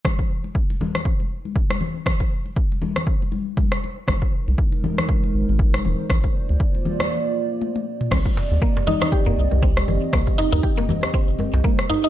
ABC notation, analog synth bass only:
X:1
M:4/4
L:1/16
Q:"Swing 16ths" 1/4=119
K:Cm
V:1 name="Analog synth bass" clef=bass
z16 | z16 | A,,, z2 C,, z6 A,,, A,,,2 z E,,, z | B,,, z2 D,, z12 |
C,, z2 E,, z6 C,, C,,2 z G,,, z | C,, z2 E,, z4 z G,,, z C,, z4 |]